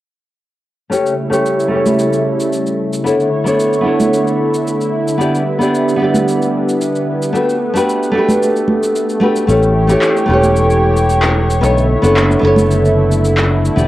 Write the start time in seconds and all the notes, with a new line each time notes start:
0.89 C#3 G3 A3 C#4 E4 G4 C#5, cabasa
1.06 cabasa
1.30 A3 C#4 E4 G4 C#5, cabasa
1.46 cabasa
1.60 cabasa
1.68 A3 C#4 E4
1.74 G4 C#5
1.86 high conga, cabasa
1.99 cabasa
2.13 cabasa
2.40 cabasa
2.53 cabasa
2.67 cabasa
2.93 cabasa
3.04 D3 A3 B3 D4 E4 A4 C#5, cabasa
3.20 cabasa
3.44 B3 D4 E4 A4 C#5, cabasa
3.60 cabasa
3.73 cabasa
3.81 B3 D4 E4
3.86 A4 C#5
4.00 high conga, cabasa
4.14 cabasa
4.27 cabasa
4.54 cabasa
4.67 cabasa
4.81 cabasa
5.08 cabasa
5.18 G3 B3 D4 E4 G4 D5, cabasa
5.35 cabasa
5.59 B3 D4 E4 G4 D5, cabasa
5.75 cabasa
5.89 cabasa
5.96 B3 D4 E4
6.02 G4 D5
6.14 high conga, cabasa
6.28 cabasa
6.42 cabasa
6.69 cabasa
6.81 cabasa
6.96 cabasa
7.22 cabasa
7.33 A3 D4 F#4 G4 B4, cabasa
7.49 cabasa
7.74 A3 D4 F#4 G4 B4, cabasa
7.89 cabasa
8.03 cabasa
8.11 A3 D4 F#4
8.17 G4 B4
8.29 high conga, cabasa
8.43 cabasa
8.56 cabasa
8.68 high conga
8.83 cabasa
8.96 cabasa
9.09 cabasa
9.20 A3 D4 F#4 G4 B4, high conga
9.36 cabasa
9.47 A1 E3 A3 C#4 G4 C#5, cabasa
9.63 cabasa
9.87 A3 C#4 E4 G4, cabasa
9.91 C#5
10.02 clap, cabasa
10.17 cabasa
10.26 E1 A3 C#4 E4
10.31 G4 C#5
10.42 high conga, cabasa
10.56 cabasa
10.70 cabasa
10.97 cabasa
11.10 cabasa
11.22 clap, cabasa
11.50 cabasa
11.61 B1 D3 A3 B3 D4 E4 A4 C#5, cabasa
11.78 cabasa
12.02 F#1 B3 D4 A4 C#5, cabasa
12.17 clap, cabasa
12.31 cabasa
12.39 F#1 B3 D4 E4
12.45 A4 C#5
12.56 high conga, cabasa
12.71 cabasa
12.85 cabasa
13.12 cabasa
13.25 cabasa
13.37 clap, cabasa
13.65 cabasa
13.76 E1 G3 B3 D4 E4 G4 D5, cabasa